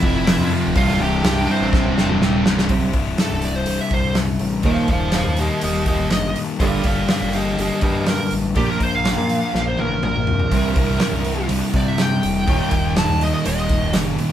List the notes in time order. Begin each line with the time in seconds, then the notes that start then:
Already playing: F2 C3 F3 E4 E5
0.02 F1 F2 C3 F3, kick
0.27 F2 C3 F3, snare, open hi-hat
0.41 F2
0.51 F2 C3 F3
0.65 D1
0.76 C2 G2 C3 F4 F5, kick, open hi-hat
0.89 snare
1.00 C1 C2 G2 C3 G4 G5
1.23 C2 G2 C3, snare, open hi-hat
1.48 C2 G2 C3 C4 C5
1.61 A1
1.72 C2 G2 C3, kick, snare
1.86 C1
1.98 E1 C2 G2 C3, snare
2.09 mid tom
2.22 D1 C2 G2 C3, snare
2.46 C1 C2 G2 C3, snare
2.59 snare
2.69 C1 C2 G2 C3 G3 E4, kick, open hi-hat
2.93 C1 C2 G2, kick, open hi-hat
3.18 C2 G2 A4, snare, open hi-hat
3.31 C1
3.42 C2 G2 D5, open hi-hat
3.56 C5
3.65 C1 C2 G2, open hi-hat
3.81 E5
3.91 C2 G2 C5, kick, open hi-hat
4.15 C2 G2, snare, open hi-hat
4.39 A1 C2 G2, open hi-hat
4.63 D#1 D#2 A#2 D#3 G3 A#3 D#4 C5 F5, kick, open hi-hat
4.88 D#1 D#2 A#2 C5 F5, kick, open hi-hat
5.12 D#2 A#2 C5, snare, open hi-hat
5.16 F5
5.27 D#2
5.37 D#2 A#2 G4 D#5, open hi-hat
5.61 D#1 D#2 A#2 G4 D#5, open hi-hat
5.86 D#2 A#2 G4 D#5, kick, open hi-hat
5.98 D#1
6.11 G1 D#2 A#2 D#5, snare, open hi-hat
6.36 D#2 A#2, open hi-hat
6.59 G1 G2 D3 G3 A#3 D4 G4 D5 F5, kick, open hi-hat
6.84 G1 G2 D3 D5 F5, kick, open hi-hat
7.08 G2 D3 D5 F5, snare, open hi-hat
7.21 G1
7.33 G2 D3 G4 D#5, open hi-hat
7.58 G1 G2 D3 G4 D#5, open hi-hat
7.81 G2 D3 G4 D#5, kick, open hi-hat
8.06 G2 D3 A#4, snare, open hi-hat
8.31 A1 G2 D3, open hi-hat
8.55 A#1 A#2 F3 A#3 D4 F4 G4 A#4, kick, open hi-hat
8.70 A#4
8.80 A#1 A#2 F3 C5, kick, open hi-hat
8.95 F5
9.04 A#2 F3, snare, open hi-hat
9.17 A#2
9.28 A#2 F3, open hi-hat
9.52 A#1 A#2 F3, snare
9.68 C5
9.77 A1 A#2 F3 A#4, high tom
10.02 A#1 A#2 F3 A#4, mid tom
10.16 mid tom
10.27 C2 A#2 F3, floor tom
10.39 floor tom
10.51 C2 G2 C3 G3 E4, kick, open hi-hat
10.76 C2 G2, kick, open hi-hat
11.00 C2 G2, snare, open hi-hat
11.13 C2
11.24 C2 G2, open hi-hat
11.48 C2 G2, open hi-hat
11.53 C3
11.73 C2 G2 C3 D5, kick, open hi-hat
11.88 E5
11.98 C2 G2 G5, snare, open hi-hat
12.22 E1 C2 G2, open hi-hat
12.47 D#1 D#2 A#2 D#3 G3 A#3 D#4, kick, open hi-hat
12.71 D#1 D#2 A#2, kick, open hi-hat
12.96 D#2 A#2 A5, snare, open hi-hat
13.09 D#2
13.21 D#2 A#2 D#5, open hi-hat
13.34 D#5
13.45 D#1 D#2 A#2 D#3 D#5, open hi-hat
13.69 D#2 A#2, kick, open hi-hat
13.82 D#1
13.93 F#1 D#2 A#2, snare, open hi-hat
14.18 D#2 A#2, open hi-hat